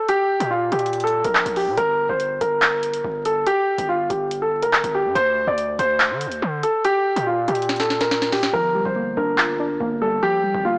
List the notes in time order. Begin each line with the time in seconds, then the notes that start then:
0.08 G4, closed hi-hat
0.40 A#2, closed hi-hat
0.51 F4
0.72 A#2 G4, closed hi-hat
0.79 closed hi-hat
0.86 closed hi-hat
0.93 closed hi-hat
1.00 A4, closed hi-hat
1.07 closed hi-hat
1.24 A#1 A#4, closed hi-hat
1.35 clap
1.46 A#1, closed hi-hat
1.56 G4, open hi-hat
1.67 A#2
1.77 G1 A#4, closed hi-hat
2.09 G1 C5
2.20 closed hi-hat
2.41 G1 A#4, closed hi-hat
2.62 clap, closed hi-hat
2.83 closed hi-hat
2.94 closed hi-hat
3.04 G1
3.25 A4, closed hi-hat
3.47 G4, closed hi-hat
3.78 G1, closed hi-hat
3.89 F4
4.10 G1 G4, closed hi-hat
4.31 closed hi-hat
4.42 A4
4.62 F1 A#4, closed hi-hat
4.73 G1, clap
4.84 G1, closed hi-hat
4.95 G4
5.05 G2
5.15 D2 C5, closed hi-hat
5.47 D2 D5
5.58 closed hi-hat
5.79 D2 C5, closed hi-hat
6.00 clap, closed hi-hat
6.11 D3
6.21 closed hi-hat
6.26 D2
6.32 closed hi-hat
6.42 D3
6.63 A4, closed hi-hat
6.85 G4, closed hi-hat
7.16 A#2, closed hi-hat
7.27 F4
7.48 A#2 G4, closed hi-hat
7.55 closed hi-hat
7.62 closed hi-hat
7.69 snare, closed hi-hat
7.76 A4, snare, closed hi-hat
7.83 closed hi-hat
7.90 snare
8.01 A#4, snare, closed hi-hat
8.11 snare
8.22 snare, closed hi-hat
8.32 G4, snare, open hi-hat
8.43 snare
8.53 G1 F3 A#4
8.75 G3
8.85 G1 C5
8.96 A#3
9.17 G1 D4 A#4
9.38 F4, clap
9.59 D4
9.80 G1 A#3
10.02 G3 A4
10.23 F3 G4
10.43 G3
10.54 G1
10.65 A#3 F4